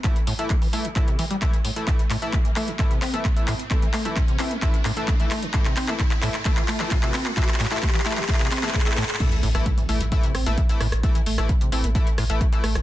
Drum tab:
CC |--------------------------------|--------------------------------|--------------------------------|--------------------------------|
HH |x-x-o-x-x-o-o-x-x-x-o-x-x-x-o-x-|x-x-o-x-x-x-o-x-x-x-o-x-x-x-o-x-|x-x-o-x-x-x-o-x-x-x-o-x-x-x-o-x-|x-x-o-x-x-x-o-x-x-x-o-x-x-x-o-x-|
CP |x-------x-------x-------x-------|x---x---x---x---x---x---x---x---|x---x---x---x---x---x---x---x---|x-x-x-x-x-x-x-x-x-x-x-x-x-x-x-x-|
SD |--------------------------------|--------------------------------|--------------------------------|--------------------------------|
BD |o-------o-------o-------o-------|o-------o-------o-------o-------|o-------o-------o-------o-------|o-------o-------o-------o-------|

CC |--------------------------------|x-------------------------------|--------------------------------|
HH |x-x-o-x-x-o-o-x-x-x-o-x-x-x-o-x-|x-x-o-x-x-x-o-x-x-x-o-x-x-x-o-x-|x-x-o-x-x-x-o-x-x-x-o-x-x-x-o-x-|
CP |xxxxxxxxxxxxxxxxxxxxxxxxxxxxxxxx|--------------------------------|--------------------------------|
SD |--------------------------------|------r-------------r-------r-r-|------r-------------r-------r-r-|
BD |o-------o-------o-------o-------|o-------o-------o-------o-------|o-------o-------o-------o-------|